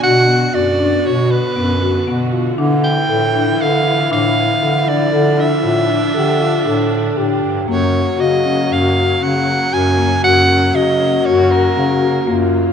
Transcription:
0.00 0.47 B2 medium
0.00 7.64 D3 medium
0.00 2.55 B3 medium
0.00 1.76 D4 loud
0.00 2.53 F#4 medium
0.00 0.17 F#4 medium
0.00 0.56 F#5 loud
0.28 0.42 B3 medium
0.53 0.99 F#2 medium
0.53 0.67 F#4 medium
0.53 1.07 D5 medium
0.79 0.93 D4 medium
1.05 1.41 B2 medium
1.05 1.32 F#4 medium
1.05 1.32 C#5 medium
1.31 2.33 B4 medium
1.55 2.00 F#2 medium
1.55 1.70 B3 medium
1.82 1.95 F#4 medium
2.07 2.52 B2 medium
2.07 2.35 B3 medium
2.07 2.34 F#4 medium
2.33 2.59 F4 medium
2.58 3.03 D3 loud
2.58 5.12 E3 medium
2.58 7.65 F3 medium
2.58 2.86 D4 medium
2.58 6.15 E4 medium
2.84 3.63 G5 medium
3.08 3.54 A2 medium
3.08 3.23 A4 medium
3.35 3.49 D4 medium
3.59 4.05 D3 medium
3.59 3.88 A4 medium
3.59 4.12 F5 medium
4.11 4.56 A2 medium
4.11 4.39 D4 medium
4.11 4.90 F5 medium
4.62 5.07 D3 medium
4.62 4.76 A4 medium
4.88 5.01 D4 medium
4.88 5.42 D5 medium
5.12 5.57 D3 medium
5.12 7.65 D4 medium
5.12 5.26 A4 medium
5.38 5.52 D4 medium
5.38 7.44 E5 medium
5.63 6.09 A2 medium
5.63 5.77 F4 medium
5.89 6.03 D4 medium
6.14 6.60 D3 medium
6.14 6.43 G4 medium
6.14 6.42 A4 medium
6.41 6.69 F4 medium
6.65 7.11 A2 medium
6.65 6.80 D4 medium
6.65 7.19 A4 loud
6.92 7.05 A4 medium
7.17 7.40 A2 medium
7.17 7.44 D4 medium
7.17 7.68 G4 medium
7.43 7.66 G2 medium
7.68 8.06 F#2 medium
7.68 12.73 C#3 medium
7.68 12.73 F#3 medium
7.68 12.73 A#3 medium
7.68 7.96 A#3 medium
7.68 10.44 F#4 medium
7.68 8.22 C#5 medium
8.19 8.64 C#3 medium
8.19 8.33 F#4 medium
8.19 8.74 D#5 medium
8.45 8.59 C#4 medium
8.70 9.15 F#2 medium
8.70 8.97 F#4 medium
8.70 9.25 F5 medium
9.21 9.66 C#3 medium
9.21 9.49 C#4 medium
9.21 9.75 F#5 medium
9.72 10.18 F#2 medium
9.72 9.86 F#4 medium
9.72 10.24 G#5 medium
9.97 10.11 A#3 medium
10.23 10.69 F#2 medium
10.23 10.37 F#4 medium
10.23 10.77 F#5 loud
10.49 10.63 C#4 medium
10.73 11.19 C#3 medium
10.73 10.88 F#4 medium
10.73 12.24 F#4 loud
10.73 11.27 D#5 medium
11.01 11.14 C#4 medium
11.25 11.70 F#2 loud
11.25 11.54 F#4 medium
11.25 11.53 C#5 medium
11.52 12.54 A#4 medium
11.76 12.21 C#3 medium
11.76 11.91 C#4 medium
12.02 12.16 F#4 medium
12.27 12.72 F#2 medium
12.27 12.55 A#3 medium
12.27 12.73 F4 medium

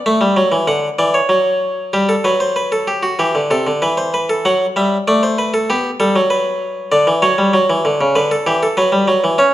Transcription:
0.06 0.21 A3 medium
0.06 0.67 E5 medium
0.21 0.37 G3 medium
0.37 0.52 F#3 medium
0.52 0.68 E3 medium
0.67 0.87 D3 medium
0.67 0.87 F#5 medium
0.99 1.19 E3 medium
0.99 1.15 D5 medium
1.14 1.92 C#5 medium
1.29 1.92 F#3 medium
1.93 2.13 G3 medium
1.93 2.09 G4 medium
2.09 2.25 A4 medium
2.24 3.16 F#3 medium
2.24 2.41 B4 medium
2.40 2.56 C5 medium
2.56 2.72 B4 medium
2.72 2.88 A4 medium
2.88 3.03 G4 medium
3.03 3.19 F#4 medium
3.19 3.35 E3 medium
3.19 3.39 G4 medium
3.35 3.50 D3 medium
3.51 3.66 C3 medium
3.51 3.70 A4 medium
3.67 3.82 D3 medium
3.82 4.43 E3 medium
3.82 3.97 B4 medium
3.97 4.13 C5 medium
4.14 4.29 B4 medium
4.29 4.44 A4 medium
4.45 4.64 F#3 medium
4.45 4.64 F#5 medium
4.76 4.95 G3 medium
4.76 4.96 E5 medium
5.08 5.67 A3 medium
5.08 5.22 D5 medium
5.23 5.38 C5 medium
5.38 5.53 B4 medium
5.54 5.68 A4 medium
5.70 5.89 B3 medium
5.70 5.89 G4 medium
6.00 6.15 G3 medium
6.00 6.19 A4 medium
6.16 6.90 F#3 medium
6.30 6.90 B4 medium
6.92 7.07 D3 medium
6.92 7.11 D5 medium
7.07 7.22 E3 medium
7.22 7.38 F#3 medium
7.22 8.12 C#5 medium
7.38 7.53 G3 medium
7.53 7.69 F#3 medium
7.70 7.85 E3 medium
7.85 8.00 D3 medium
8.01 8.15 C#3 medium
8.15 8.35 D3 medium
8.15 8.30 B4 medium
8.31 8.46 A4 medium
8.47 8.66 E3 medium
8.47 8.61 G4 medium
8.63 8.77 A4 medium
8.77 8.92 F#3 medium
8.77 9.37 B4 medium
8.92 9.07 G3 medium
9.08 9.22 F#3 medium
9.24 9.38 E3 medium
9.38 9.54 C#4 medium
9.38 9.54 C#5 medium

